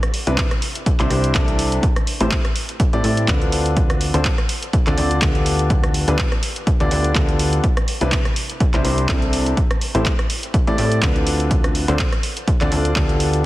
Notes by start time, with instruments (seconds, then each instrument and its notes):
0.03 cross-stick, closed hi-hat
0.14 open hi-hat
0.27 analog synth bass C2, grand piano C3 C4 D4 E4 G4 B4, closed hi-hat
0.38 kick, clap, closed hi-hat
0.51 cross-stick, closed hi-hat
0.62 open hi-hat
0.75 closed hi-hat
0.86 kick, closed hi-hat
1.00 analog synth bass C2, grand piano C3 C4 D4 E4 G4 C5, clap, closed hi-hat
1.10 analog synth bass C2, grand piano C3 C4 D4 E4 G4 C5, cross-stick, open hi-hat
1.24 closed hi-hat
1.35 analog synth bass C2, grand piano C3 C4 D4 E4 G4 A4, kick, clap, closed hi-hat
1.48 closed hi-hat
1.59 open hi-hat
1.72 closed hi-hat
1.83 kick, closed hi-hat
1.96 cross-stick, closed hi-hat
2.07 open hi-hat
2.21 analog synth bass A1, grand piano A2 C4 E4 G4 A4 C5, closed hi-hat
2.31 kick, clap, closed hi-hat
2.45 cross-stick, closed hi-hat
2.56 open hi-hat
2.69 closed hi-hat
2.80 kick, closed hi-hat
2.93 analog synth bass A1, grand piano A2 C4 E4 G4 A4 D5, closed hi-hat
3.04 grand piano A2 C4 E4 G4 A4 D5, analog synth bass A2, open hi-hat
3.17 closed hi-hat
3.28 analog synth bass D2, grand piano C4 D4 F4 B4, kick, clap, closed hi-hat
3.42 closed hi-hat
3.52 open hi-hat
3.66 closed hi-hat
3.77 kick, closed hi-hat
3.90 cross-stick, closed hi-hat
4.01 open hi-hat
4.14 analog synth bass D2, grand piano D3 C4 D4 F4 A4 C5, closed hi-hat
4.25 kick, clap, closed hi-hat
4.38 cross-stick, closed hi-hat
4.49 open hi-hat
4.62 closed hi-hat
4.73 kick, closed hi-hat
4.87 analog synth bass D2, grand piano D3 C4 D4 F4 A4 D5, clap, closed hi-hat
4.98 analog synth bass D2, grand piano D3 C4 D4 F4 A4 D5, open hi-hat
5.11 closed hi-hat
5.22 analog synth bass D2, grand piano D3 B3 G4 A4, kick, clap, closed hi-hat
5.35 closed hi-hat
5.46 open hi-hat
5.59 closed hi-hat
5.70 kick, closed hi-hat
5.84 cross-stick, closed hi-hat
5.94 open hi-hat
6.08 analog synth bass D2, grand piano D3 B3 D4 F4 G4 B4, closed hi-hat
6.19 kick, clap, closed hi-hat
6.32 cross-stick, closed hi-hat
6.43 open hi-hat
6.56 closed hi-hat
6.67 kick, closed hi-hat
6.80 analog synth bass D2, grand piano D3 B3 D4 F4 G4 D5, closed hi-hat
6.91 analog synth bass D2, grand piano D3 B3 D4 F4 G4 D5, open hi-hat
7.04 closed hi-hat
7.15 grand piano D3 B3 F4, kick, clap, closed hi-hat
7.29 closed hi-hat
7.39 open hi-hat
7.53 closed hi-hat
7.64 kick, closed hi-hat
7.77 cross-stick, closed hi-hat
7.88 open hi-hat
8.01 analog synth bass C2, grand piano C3 C4 D4 E4 G4 B4, closed hi-hat
8.12 kick, clap, closed hi-hat
8.25 cross-stick, closed hi-hat
8.36 open hi-hat
8.50 closed hi-hat
8.60 kick, closed hi-hat
8.74 analog synth bass C2, grand piano C3 C4 D4 E4 G4 C5, clap, closed hi-hat
8.85 analog synth bass C2, grand piano C3 C4 D4 E4 G4 C5, open hi-hat
8.98 closed hi-hat
9.09 analog synth bass C2, grand piano C3 C4 D4 E4, kick, clap, closed hi-hat
9.22 closed hi-hat
9.33 open hi-hat
9.46 closed hi-hat
9.57 kick, closed hi-hat
9.71 cross-stick, closed hi-hat
9.81 open hi-hat
9.95 analog synth bass A1, grand piano A2 C4 E4 G4 A4 C5, closed hi-hat
10.06 kick, clap, closed hi-hat
10.19 cross-stick, closed hi-hat
10.30 open hi-hat
10.43 closed hi-hat
10.54 kick, closed hi-hat
10.67 analog synth bass A1, grand piano A2 C4 E4 G4 A4 D5, closed hi-hat
10.78 grand piano A2 C4 E4 G4 A4 D5, analog synth bass A2, open hi-hat
10.92 closed hi-hat
11.02 analog synth bass D2, grand piano D3 C4 F4 B4, kick, clap, closed hi-hat
11.16 closed hi-hat
11.27 open hi-hat
11.40 closed hi-hat
11.51 kick, closed hi-hat
11.64 cross-stick, closed hi-hat
11.75 open hi-hat
11.88 analog synth bass D2, grand piano D3 C4 D4 F4 A4 C5, closed hi-hat
11.99 kick, clap, closed hi-hat
12.12 cross-stick, closed hi-hat
12.23 open hi-hat
12.37 closed hi-hat
12.48 kick, closed hi-hat
12.61 analog synth bass D2, grand piano D3 C4 D4 F4 A4 D5, clap, closed hi-hat
12.72 analog synth bass D2, grand piano D3 C4 D4 F4 A4 D5, open hi-hat
12.85 closed hi-hat
12.96 analog synth bass D2, grand piano D3 B3 G4, kick, clap, closed hi-hat
13.09 closed hi-hat
13.20 open hi-hat
13.33 closed hi-hat